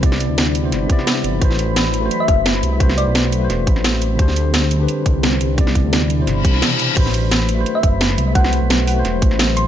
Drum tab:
CC |----------------|----------------|----------------|----------------|
HH |x-x-x-x-x-x-x-x-|x-x-x-x-x-x-x-x-|x-x-x-x-x-x-x-x-|x-x-x-x-x-x-x-x-|
SD |-o--oo--o--oo---|-o--o-------oo--|-o--oo--o--oo---|-o--o-------oo--|
BD |o---------o-----|o---------o-----|o---------o-----|o---------o-----|

CC |----------------|x---------------|----------------|
HH |x-x-x-x-x-x-x-x-|x-x-x-x-x-x-x-x-|x-x-x-o-x-x-x-x-|
SD |-o--oo--o--oo---|-o--o-------oo--|-o--oo--o--oo---|
BD |o-o-------o-----|o---------o-----|o---------o-----|